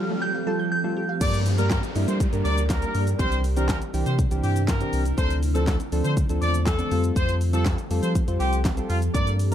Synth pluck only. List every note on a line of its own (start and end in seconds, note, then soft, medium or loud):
0.10 0.21 A3 medium
0.22 0.33 G4 loud
0.35 0.46 F5 medium
0.47 0.58 A5 medium
0.59 0.71 G6 medium
0.72 0.83 F3 medium
0.84 0.95 A3 medium
0.97 1.08 G4 medium
1.09 1.20 F5 medium